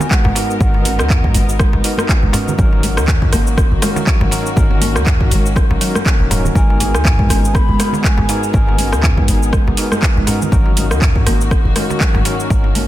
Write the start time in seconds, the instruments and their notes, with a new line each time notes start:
Already playing: string section G#3 B3 D#4 A#4, tine electric piano B3 D#4 F#4 A#4, bansuri G#5
0.01 darbuka ka, shaker
0.11 marimba G#3, bansuri F#5, kick, clap, shaker
0.24 808-style bass G#1, muted conga, darbuka tek, high conga, darbuka dum
0.35 tine electric piano B3 D#4 F#4 A#4, marimba D#4, open hi-hat, darbuka tek, shaker
0.51 shaker
0.60 808-style bass G#1, tine electric piano B3 D#4 F#4 A#4, bansuri F#5, kick, muted conga, high conga, darbuka dum, shaker
0.74 marimba G#3, darbuka ka, low conga
0.85 marimba C#4, open hi-hat, high conga, shaker
0.99 808-style bass D#2, cross-stick, muted conga, darbuka tek, shaker
1.10 marimba B3, kick, clap, mid tom, shaker
1.24 marimba G#3, kick, mid tom
1.34 808-style bass G#1, open hi-hat, muted conga, high conga, shaker
1.49 shaker
1.59 marimba G#3, kick, cross-stick, darbuka tek, shaker
1.73 808-style bass G#1, muted conga, darbuka ka
1.84 tine electric piano B3 D#4 F#4 A#4, marimba D#4, open hi-hat, shaker
1.98 cross-stick, high conga, shaker
2.09 kick, clap, shaker
2.23 808-style bass G#1, marimba G#3, muted conga
2.33 tine electric piano B3 D#4 F#4 A#4, marimba C#4, open hi-hat, high conga, darbuka tek, darbuka dum, shaker
2.48 low conga, shaker
2.58 808-style bass G#1, string section D#3 A#3 F#4, marimba F#3, tine electric piano C#4 D#4 F#4 A#4, kick, muted conga, shaker
2.73 marimba D#3, darbuka ka
2.83 open hi-hat, high conga, shaker
2.97 808-style bass D#2, cross-stick, muted conga, darbuka tek, shaker
3.08 marimba D#3, kick, clap, mid tom, shaker
3.22 kick, mid tom
3.32 808-style bass G#1, marimba A#3, cross-stick, open hi-hat, muted conga, high conga, shaker
3.47 shaker
3.58 kick, cross-stick, shaker
3.72 808-style bass G#1, marimba D#3, muted conga
3.82 marimba G#3, tine electric piano C#4 D#4 F#4 A#4, cross-stick, open hi-hat, darbuka tek, high conga, shaker
3.96 darbuka ka, low conga, shaker
4.07 kick, clap, shaker
4.21 808-style bass G#1, marimba D#3, muted conga, darbuka tek, high conga, darbuka dum
4.31 tine electric piano C#4 D#4 F#4 A#4, open hi-hat, darbuka tek, shaker
4.46 shaker
4.56 808-style bass G#1, marimba D#3, string section C#4, tine electric piano C#4 D#4 F#4 A#4, kick, muted conga, high conga, darbuka dum, shaker
4.70 darbuka ka, low conga
4.81 marimba A#3, open hi-hat, high conga, shaker
4.95 808-style bass D#2, cross-stick, muted conga, darbuka tek, shaker
5.06 kick, clap, mid tom, shaker
5.20 marimba D#3, kick, mid tom
5.31 808-style bass G#1, marimba G#3, open hi-hat, muted conga, high conga, shaker
5.46 shaker
5.56 marimba F#3, kick, cross-stick, darbuka tek, shaker
5.70 808-style bass G#1, marimba D#3, muted conga, darbuka ka
5.81 marimba F#3, tine electric piano C#4 D#4 F#4 A#4, open hi-hat, shaker
5.95 cross-stick, high conga, shaker
6.06 marimba A#3, kick, clap, darbuka tek, shaker
6.20 808-style bass D#1, muted conga
6.30 marimba F#3, tine electric piano C#4 D#4 F#4 A#4, open hi-hat, darbuka tek, high conga, darbuka dum, shaker
6.45 low conga, shaker
6.55 808-style bass G#1, string section G#3 B3 D#4 G#4, marimba G#3, tine electric piano B3 D#4 F#4 A#4, bansuri G#5, kick, shaker
6.70 darbuka ka
6.80 marimba D#4, open hi-hat, high conga, shaker
6.94 808-style bass D#2, cross-stick, muted conga, darbuka tek, shaker
7.05 kick, clap, mid tom, shaker
7.19 marimba G#3, kick, mid tom
7.29 808-style bass G#1, marimba C#4, cross-stick, open hi-hat, muted conga, high conga, shaker
7.45 shaker
7.54 marimba B3, bansuri B5, kick, cross-stick, shaker
7.69 808-style bass G#1, marimba G#3, muted conga
7.79 tine electric piano B3 D#4 F#4 A#4, cross-stick, open hi-hat, high conga, darbuka tek, shaker
7.92 darbuka ka, low conga, shaker
7.98 bansuri B5
8.04 marimba G#3, bansuri G#5, kick, clap, shaker
8.17 808-style bass G#1, muted conga, high conga, darbuka tek, darbuka dum
8.29 tine electric piano B3 D#4 F#4 A#4, marimba D#4, open hi-hat, darbuka tek, shaker
8.43 shaker
8.53 808-style bass G#1, tine electric piano B3 D#4 F#4 A#4, bansuri G#5, kick, muted conga, high conga, darbuka dum, shaker
8.67 marimba G#3, darbuka ka, low conga
8.78 marimba C#4, open hi-hat, high conga, shaker
8.92 808-style bass D#2, cross-stick, muted conga, darbuka tek, shaker
9.03 marimba B3, kick, clap, mid tom, shaker
9.17 marimba G#3, kick, mid tom
9.28 808-style bass G#1, open hi-hat, muted conga, high conga, shaker
9.43 shaker
9.53 marimba G#3, kick, cross-stick, darbuka tek, shaker
9.67 808-style bass G#1, muted conga, darbuka ka
9.77 tine electric piano B3 D#4 F#4 A#4, marimba D#4, open hi-hat, shaker
9.92 cross-stick, high conga, shaker
10.03 kick, clap, shaker
10.16 808-style bass G#1, marimba G#3, muted conga
10.27 tine electric piano B3 D#4 F#4 A#4, marimba C#4, open hi-hat, darbuka tek, high conga, darbuka dum, shaker
10.42 low conga, shaker
10.52 808-style bass G#1, string section D#3 A#3 F#4, marimba F#3, tine electric piano C#4 D#4 F#4 A#4, kick, muted conga, shaker
10.66 marimba D#3, darbuka ka
10.77 open hi-hat, high conga, shaker
10.91 808-style bass D#2, cross-stick, muted conga, darbuka tek, shaker
11.02 marimba D#3, kick, clap, mid tom, shaker
11.16 kick, mid tom
11.26 808-style bass G#1, marimba A#3, cross-stick, open hi-hat, muted conga, high conga, shaker
11.41 shaker
11.51 kick, cross-stick, shaker
11.65 808-style bass G#1, marimba D#3, muted conga
11.76 marimba G#3, tine electric piano C#4 D#4 F#4 A#4, cross-stick, open hi-hat, high conga, darbuka tek, shaker
11.90 darbuka ka, low conga, shaker
12.01 marimba F#3, kick, clap, shaker
12.14 808-style bass G#1, marimba D#3, muted conga, darbuka tek, high conga, darbuka dum
12.25 tine electric piano C#4 D#4 F#4 A#4, open hi-hat, darbuka tek, shaker
12.40 shaker
12.50 808-style bass G#1, marimba D#3, tine electric piano C#4 D#4 F#4 A#4, kick, muted conga, high conga, darbuka dum, low conga, shaker
12.64 darbuka ka, low conga
12.75 marimba A#3, open hi-hat, high conga, shaker